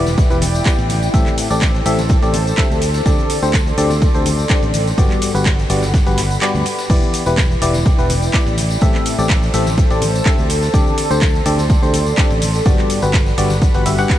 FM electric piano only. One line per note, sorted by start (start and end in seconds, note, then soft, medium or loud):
0.30 0.43 E3 medium
0.30 0.43 B3 medium
0.30 0.43 E4 medium
0.30 0.43 G4 medium
0.30 0.43 B4 medium
0.66 0.88 B3 medium
0.66 0.88 E4 medium
0.66 0.88 G4 medium
0.66 0.88 D5 medium
1.14 1.47 A2 medium
1.14 1.47 C4 medium
1.14 1.47 G4 medium
1.14 1.47 A4 medium
1.14 1.47 E5 medium
1.51 1.64 A2 medium
1.51 1.64 C4 medium
1.51 1.64 G4 medium
1.51 1.64 A4 medium
1.51 1.64 D5 medium
1.86 2.00 A2 medium
1.86 2.00 C4 medium
1.86 2.00 G4 medium
1.86 2.00 A4 medium
1.86 2.00 E5 medium
2.23 2.36 A2 medium
2.23 2.36 C4 medium
2.23 2.36 G4 medium
2.23 2.36 A4 medium
2.23 2.36 D5 medium
2.58 2.80 D3 medium
2.58 2.80 C4 medium
2.58 2.80 G4 medium
2.58 2.80 A4 medium
2.58 2.80 E5 medium
3.06 3.39 D3 medium
3.06 3.39 C4 medium
3.06 3.39 G4 medium
3.06 3.39 A4 medium
3.06 3.39 D5 loud
3.43 3.56 D3 medium
3.43 3.56 C4 medium
3.43 3.56 G4 medium
3.43 3.56 A4 medium
3.43 3.56 C5 medium
3.78 3.92 D3 medium
3.78 3.92 C4 medium
3.78 3.92 G4 medium
3.78 3.92 A4 medium
3.78 3.92 D5 loud
4.15 4.28 D3 medium
4.15 4.28 C4 medium
4.15 4.28 G4 medium
4.15 4.28 A4 medium
4.15 4.28 C5 medium
4.50 4.72 D3 medium
4.50 4.72 C4 medium
4.50 4.72 G4 medium
4.50 4.72 A4 medium
4.50 4.72 D5 medium
4.98 5.32 G2 medium
4.98 5.32 B3 medium
4.98 5.32 F#4 medium
4.98 5.32 G4 medium
4.98 5.32 D5 medium
5.35 5.48 G2 medium
5.35 5.48 B3 medium
5.35 5.48 F#4 medium
5.35 5.48 G4 medium
5.35 5.48 B4 medium
5.70 5.84 G2 medium
5.70 5.84 B3 medium
5.70 5.84 F#4 medium
5.70 5.84 G4 medium
5.70 5.84 D5 medium
6.07 6.20 G2 medium
6.07 6.20 B3 medium
6.07 6.20 F#4 medium
6.07 6.20 G4 medium
6.07 6.20 B4 medium
6.42 6.64 G2 medium
6.42 6.64 B3 medium
6.42 6.64 F#4 medium
6.42 6.64 G4 medium
6.42 6.64 D5 medium
6.90 7.23 E3 medium
6.90 7.23 B3 medium
6.90 7.23 E4 medium
6.90 7.23 G4 medium
6.90 7.23 D5 medium
7.26 7.40 E3 medium
7.26 7.40 B3 medium
7.26 7.39 E4 medium
7.26 7.40 G4 medium
7.26 7.40 B4 medium
7.62 7.76 E3 medium
7.62 7.76 B3 medium
7.62 7.76 E4 medium
7.62 7.76 G4 medium
7.62 7.76 D5 medium
7.99 8.12 E3 medium
7.99 8.12 B3 medium
7.99 8.12 E4 medium
7.99 8.12 G4 medium
7.99 8.12 B4 medium
8.34 8.56 B3 medium
8.34 8.56 E4 medium
8.34 8.56 G4 medium
8.34 8.56 D5 medium
8.82 9.15 A2 medium
8.82 9.15 C4 medium
8.82 9.15 G4 medium
8.82 9.15 A4 medium
8.82 9.15 E5 loud
9.19 9.32 A2 medium
9.19 9.32 C4 medium
9.19 9.32 G4 medium
9.19 9.32 A4 medium
9.19 9.32 D5 medium
9.54 9.68 A2 medium
9.54 9.68 C4 medium
9.54 9.68 G4 medium
9.54 9.68 A4 medium
9.54 9.68 E5 loud
9.91 10.04 A2 medium
9.91 10.04 C4 medium
9.91 10.04 G4 medium
9.91 10.04 A4 medium
9.91 10.04 D5 medium
10.26 10.48 D3 medium
10.26 10.48 C4 medium
10.26 10.48 G4 medium
10.26 10.48 A4 medium
10.26 10.48 E5 medium
10.74 11.07 D3 medium
10.74 11.07 C4 medium
10.74 11.07 G4 medium
10.74 11.07 A4 medium
10.74 11.07 D5 medium
11.11 11.24 D3 medium
11.11 11.24 C4 medium
11.11 11.24 G4 medium
11.11 11.24 A4 medium
11.11 11.24 C5 medium
11.46 11.60 D3 medium
11.46 11.60 C4 medium
11.46 11.60 G4 medium
11.46 11.60 A4 medium
11.46 11.60 D5 medium
11.83 11.96 D3 medium
11.83 11.96 C4 medium
11.83 11.96 G4 medium
11.83 11.96 A4 medium
11.83 11.96 C5 medium
12.18 12.40 D3 medium
12.18 12.40 C4 medium
12.18 12.40 G4 medium
12.18 12.40 A4 medium
12.18 12.40 D5 medium
12.66 12.99 G2 medium
12.66 12.99 B3 medium
12.66 12.99 F#4 medium
12.66 12.99 G4 medium
12.66 12.99 D5 medium
13.03 13.16 G2 medium
13.03 13.16 B3 medium
13.03 13.16 F#4 medium
13.03 13.16 G4 medium
13.03 13.16 B4 medium
13.38 13.52 G2 medium
13.38 13.52 B3 medium
13.38 13.52 F#4 medium
13.38 13.52 G4 medium
13.38 13.52 D5 medium
13.75 13.84 G2 medium
13.75 13.84 B3 medium
13.75 13.84 F#4 medium
13.75 13.84 G4 medium
13.75 13.84 B4 medium
13.86 13.97 G2 medium
13.86 13.97 B3 medium
13.86 13.97 F#4 medium
13.86 13.97 G4 medium
13.86 13.97 E5 medium
13.99 14.19 G2 loud
13.99 14.19 B3 medium
13.99 14.19 F#4 medium
13.99 14.19 G4 medium
13.99 14.19 F#5 loud